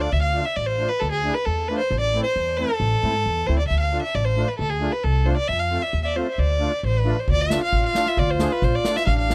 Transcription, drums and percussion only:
7.28 kick
7.50 snare
7.72 kick
7.95 snare
8.06 snare
8.17 kick
8.39 snare
8.62 kick, snare
8.85 snare
8.96 snare
9.07 kick
9.30 snare

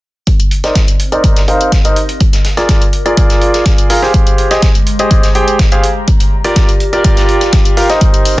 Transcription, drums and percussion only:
0.27 kick, closed hi-hat
0.40 closed hi-hat
0.51 closed hi-hat
0.64 snare, closed hi-hat
0.75 kick, snare, closed hi-hat
0.88 closed hi-hat
1.00 closed hi-hat
1.12 closed hi-hat
1.24 kick, closed hi-hat
1.36 snare, closed hi-hat
1.48 closed hi-hat
1.61 closed hi-hat
1.72 kick, snare, closed hi-hat
1.85 closed hi-hat
1.96 closed hi-hat
2.09 closed hi-hat
2.20 kick, closed hi-hat
2.33 snare, closed hi-hat
2.45 snare, closed hi-hat
2.57 snare, closed hi-hat
2.69 kick, snare, closed hi-hat
2.81 closed hi-hat
2.93 closed hi-hat
3.06 closed hi-hat
3.17 kick, closed hi-hat
3.30 snare, closed hi-hat
3.42 closed hi-hat
3.54 snare, closed hi-hat
3.66 kick, snare, closed hi-hat
3.78 closed hi-hat
3.90 open hi-hat
4.03 snare
4.14 kick, closed hi-hat
4.27 closed hi-hat
4.38 closed hi-hat
4.51 snare, closed hi-hat
4.62 kick, snare, closed hi-hat
4.75 closed hi-hat
4.87 closed hi-hat
4.99 closed hi-hat
5.11 kick, closed hi-hat
5.23 snare, closed hi-hat
5.35 closed hi-hat
5.48 closed hi-hat
5.59 kick, snare, closed hi-hat
5.72 closed hi-hat
5.84 closed hi-hat
6.08 kick, closed hi-hat
6.20 closed hi-hat
6.44 closed hi-hat
6.56 kick, snare, closed hi-hat
6.69 closed hi-hat
6.80 closed hi-hat
6.93 closed hi-hat
7.04 kick, closed hi-hat
7.17 snare, closed hi-hat
7.29 closed hi-hat
7.41 snare, closed hi-hat
7.53 kick, snare, closed hi-hat
7.65 closed hi-hat
7.77 open hi-hat
7.90 snare, closed hi-hat
8.01 kick, closed hi-hat
8.14 closed hi-hat
8.25 closed hi-hat, open hi-hat

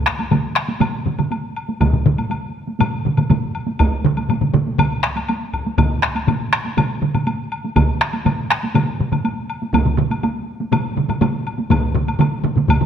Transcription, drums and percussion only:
0.06 taiko rim
0.19 taiko high, high woodblock
0.31 taiko low-mid, taiko mid, taiko high, high woodblock
0.56 taiko rim
0.68 taiko high
0.80 taiko low-mid, taiko mid, taiko high, high woodblock
1.06 taiko low-mid, taiko mid
1.19 taiko low-mid, taiko mid, taiko high, high woodblock
1.31 taiko high, high woodblock
1.56 high woodblock
1.69 taiko high
1.81 taiko, taiko low-mid, taiko mid, taiko high, high woodblock
1.93 taiko low-mid, taiko mid
2.06 taiko low-mid, taiko mid
2.18 taiko high, high woodblock
2.30 taiko high, high woodblock
2.68 taiko high
2.80 taiko low-mid, taiko mid, taiko high, high woodblock
3.05 taiko low-mid, taiko mid
3.17 taiko low-mid, taiko mid, taiko high, high woodblock
3.30 taiko low-mid, taiko mid, taiko high, high woodblock
3.55 high woodblock
3.67 taiko high
3.79 taiko, taiko high, high woodblock
4.05 taiko low-mid, taiko mid
4.17 taiko high, high woodblock
4.29 taiko low-mid, taiko mid, taiko high, high woodblock
4.41 taiko low-mid, taiko mid
4.54 taiko low-mid, taiko mid, taiko high
4.67 taiko high
4.78 taiko, taiko low-mid, taiko mid, taiko high, high woodblock
5.03 taiko rim
5.16 taiko high, high woodblock
5.29 taiko high, high woodblock
5.53 taiko, high woodblock
5.66 taiko high
5.78 taiko, taiko low-mid, taiko mid, taiko high, high woodblock
6.03 taiko rim
6.16 taiko high, high woodblock
6.27 taiko low-mid, taiko mid, taiko high, high woodblock
6.53 taiko rim
6.65 taiko high
6.77 taiko low-mid, taiko mid, taiko high, high woodblock
7.02 taiko low-mid, taiko mid
7.14 taiko low-mid, taiko mid, taiko high, high woodblock
7.27 taiko high, high woodblock
7.52 high woodblock
7.64 taiko high
7.76 taiko, taiko low-mid, taiko mid, taiko high, high woodblock
8.01 taiko rim
8.13 taiko high, high woodblock
8.25 taiko low-mid, taiko mid, taiko high, high woodblock
8.50 taiko rim
8.63 taiko high
8.75 taiko low-mid, taiko mid, taiko high, high woodblock
8.99 taiko low-mid, taiko mid
9.12 taiko low-mid, taiko mid, taiko high, high woodblock
9.25 taiko high, high woodblock
9.50 high woodblock
9.62 taiko high
9.73 taiko, taiko low-mid, taiko mid, taiko high, high woodblock
9.86 taiko low-mid, taiko mid
9.98 taiko low-mid, taiko mid
10.11 taiko high, high woodblock
10.23 taiko high, high woodblock
10.60 taiko high
10.72 taiko low-mid, taiko mid, taiko high, high woodblock
10.97 taiko low-mid, taiko mid
11.09 taiko low-mid, taiko mid, taiko high, high woodblock
11.21 taiko low-mid, taiko mid, taiko high, high woodblock
11.47 high woodblock
11.58 taiko high
11.70 taiko, taiko low-mid, taiko mid, taiko high, high woodblock
11.95 taiko low-mid, taiko mid
12.08 taiko high, high woodblock
12.19 taiko low-mid, taiko mid, taiko high, high woodblock
12.44 taiko low-mid, taiko mid, taiko high
12.56 taiko low-mid, taiko mid, taiko high
12.68 taiko, taiko low-mid, taiko mid, taiko high, high woodblock
12.81 taiko low-mid, taiko mid

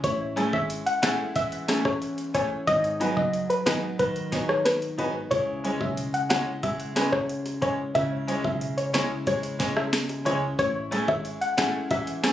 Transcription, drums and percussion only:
0.04 kick, closed hi-hat
0.37 closed hi-hat
0.53 kick
0.70 closed hi-hat
0.87 closed hi-hat
1.03 cross-stick, snare, closed hi-hat
1.36 kick, closed hi-hat
1.52 closed hi-hat
1.68 cross-stick, snare, closed hi-hat
1.85 kick, cross-stick
2.02 closed hi-hat
2.18 closed hi-hat
2.35 kick, closed hi-hat
2.68 kick, closed hi-hat
2.84 closed hi-hat
3.01 closed hi-hat
3.17 kick
3.33 closed hi-hat
3.50 closed hi-hat
3.66 cross-stick, snare, closed hi-hat
3.99 kick, closed hi-hat
4.16 closed hi-hat
4.32 kick, snare, closed hi-hat
4.49 cross-stick
4.66 cross-stick, snare, closed hi-hat
4.82 closed hi-hat
4.99 closed hi-hat
5.31 kick, closed hi-hat, high bongo
5.65 closed hi-hat
5.81 kick, high bongo
5.97 closed hi-hat
6.14 closed hi-hat
6.30 cross-stick, snare, closed hi-hat, high bongo
6.63 kick, closed hi-hat, high bongo
6.80 closed hi-hat
6.96 cross-stick, snare, closed hi-hat
7.13 kick, cross-stick
7.29 closed hi-hat
7.46 closed hi-hat, high bongo
7.62 kick, closed hi-hat, low bongo
7.95 kick, closed hi-hat, high bongo
8.28 closed hi-hat
8.44 kick, high bongo
8.61 closed hi-hat
8.78 closed hi-hat
8.94 cross-stick, snare, closed hi-hat, high bongo
9.27 kick, closed hi-hat, high bongo
9.43 closed hi-hat
9.60 kick, snare, closed hi-hat
9.77 cross-stick
9.93 cross-stick, snare, closed hi-hat
10.09 closed hi-hat, high bongo
10.26 closed hi-hat, low bongo
10.59 kick, closed hi-hat, high bongo
10.92 closed hi-hat
11.08 kick, high bongo
11.25 closed hi-hat
11.42 closed hi-hat
11.58 cross-stick, snare, closed hi-hat, high bongo
11.91 kick, closed hi-hat, high bongo
12.07 closed hi-hat
12.24 cross-stick, snare, closed hi-hat

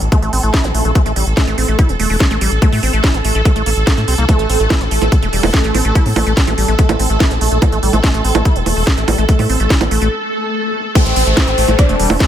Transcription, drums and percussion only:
0.02 closed hi-hat
0.12 kick, closed hi-hat
0.22 closed hi-hat
0.33 open hi-hat
0.43 closed hi-hat
0.54 kick, snare, closed hi-hat
0.64 closed hi-hat
0.74 open hi-hat
0.85 closed hi-hat
0.95 kick, closed hi-hat
1.06 closed hi-hat
1.16 open hi-hat
1.27 closed hi-hat
1.37 kick, snare, closed hi-hat
1.47 closed hi-hat
1.58 open hi-hat
1.68 closed hi-hat
1.79 kick, closed hi-hat
1.89 closed hi-hat
2.00 open hi-hat
2.10 open hi-hat
2.20 kick, snare, closed hi-hat
2.31 closed hi-hat
2.41 open hi-hat
2.52 closed hi-hat
2.62 kick, closed hi-hat
2.72 open hi-hat
2.83 open hi-hat
2.93 closed hi-hat
3.04 kick, snare, closed hi-hat
3.14 closed hi-hat
3.25 open hi-hat
3.35 closed hi-hat
3.45 kick, closed hi-hat
3.56 closed hi-hat
3.66 open hi-hat
3.77 closed hi-hat
3.87 kick, snare, closed hi-hat
3.97 closed hi-hat
4.08 open hi-hat
4.18 closed hi-hat
4.29 kick, closed hi-hat, high bongo
4.39 closed hi-hat
4.50 open hi-hat
4.60 closed hi-hat
4.70 kick, snare, closed hi-hat, high bongo
4.81 closed hi-hat
4.91 open hi-hat
5.02 closed hi-hat, high bongo
5.12 kick, closed hi-hat
5.22 closed hi-hat
5.33 open hi-hat
5.43 open hi-hat, high bongo
5.54 kick, snare, closed hi-hat
5.64 closed hi-hat
5.74 open hi-hat, high bongo
5.85 closed hi-hat
5.95 kick, closed hi-hat
6.06 open hi-hat
6.16 open hi-hat, high bongo
6.27 closed hi-hat
6.37 kick, snare, closed hi-hat
6.47 closed hi-hat, high bongo
6.58 open hi-hat
6.68 closed hi-hat
6.79 kick, closed hi-hat
6.89 closed hi-hat, high bongo
6.99 open hi-hat
7.10 closed hi-hat
7.20 kick, snare, closed hi-hat, high bongo
7.31 closed hi-hat
7.41 open hi-hat
7.52 closed hi-hat
7.62 kick, closed hi-hat, high bongo
7.72 closed hi-hat
7.83 open hi-hat
7.93 closed hi-hat, high bongo
8.04 kick, snare, closed hi-hat
8.14 closed hi-hat
8.24 open hi-hat
8.35 closed hi-hat, high bongo
8.45 kick, closed hi-hat
8.56 closed hi-hat
8.66 open hi-hat, high bongo
8.77 open hi-hat
8.87 kick, snare, closed hi-hat
8.97 closed hi-hat
9.08 open hi-hat, high bongo
9.18 closed hi-hat
9.29 kick, closed hi-hat
9.39 open hi-hat, high bongo
9.49 open hi-hat
9.60 closed hi-hat
9.70 kick, snare, closed hi-hat
9.81 closed hi-hat, high bongo
9.91 open hi-hat
10.02 closed hi-hat
10.95 kick, closed hi-hat, high bongo
11.06 closed hi-hat
11.16 open hi-hat
11.27 closed hi-hat
11.37 kick, snare, closed hi-hat, high bongo
11.47 closed hi-hat
11.58 open hi-hat
11.68 closed hi-hat, high bongo
11.79 kick, closed hi-hat
11.89 closed hi-hat
12.00 open hi-hat
12.10 open hi-hat, high bongo
12.20 kick, snare, closed hi-hat

